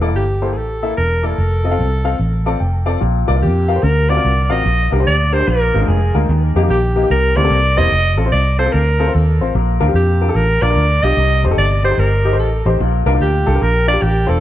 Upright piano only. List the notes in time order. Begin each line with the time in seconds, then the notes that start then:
Already playing: E3
0.01 A#3 E4 A4 D5
0.07 A#3 E4 A4 D5
0.42 A#3 E4 A4 C5
0.83 A#3 E4 A4 E5
1.23 A#3 E4 A4 D5
1.64 C4 F4 A4 D#5
1.71 C4 F4 A4 F5
2.04 C4 F4 A4 F5
2.46 C4 F4 A4 D5 A5
2.60 G5
2.86 C4 F4 A4 D5 F5
3.01 A#2
3.28 F4 A#4 D5
3.35 F4 A#4 D5
3.68 F4 A#4 F5
3.76 F4 A#4 C5
3.83 D3
4.09 C4 F4 F#4 A#4 D5
4.16 C4 F4 F#4 A#4 D5
4.50 C4 F4 F#4 A#4 F5
4.64 A#2
4.92 D4 G4 A#4
5.00 D4 G4 C5
5.33 D4 G4 A#4
5.40 D4 G4 C5
5.48 A#2
5.74 G#3 A#3 D4 F4 A#4
5.81 G#3 A#3 D4 F4 A#4
6.14 G#3 A#3 D4 F4 A#4
6.30 D#3
6.56 A#3 D#4 G4
6.62 A#3 D#4 G4
6.96 A#3 D#4 G4
7.03 A#3 D#4 G4
7.10 C3
7.36 A#3 C4 E4 G4 C5
7.44 A#3 C4 E4 G4 A4
7.77 A#3 C4 E4 G4 C5
8.17 C4 F4 A4
8.26 C4 F4 C5
8.59 C4 F4 A4
8.66 C4 F4 A4
8.99 C4 F4 A4
9.07 C4 F4 C5
9.41 C4 F4 C5
9.55 A#2
9.80 D4 F4 A#4
9.88 D4 F4 G4
10.21 D4 F4 A#4
10.29 D4 F4 A4
10.62 D4 F4 A#4
10.70 D4 F4 A#4
11.04 D4 F4 G4
11.18 C3
11.45 D#4 G4 C5
11.51 D#4 G4 A4
11.84 D#4 G4 D5
11.91 D#4 G4 C5
12.25 D#4 G4 D#5
12.33 D#4 G4 C5
12.66 D#4 G4 C5
12.81 A#2
13.06 D4 F4 A#4
13.14 D4 F4 A#4
13.46 D4 F4 A4
13.55 D4 F4 A#4
13.87 D4 F4 A#4
13.93 D4 F4 G4
14.27 D4 F4 C5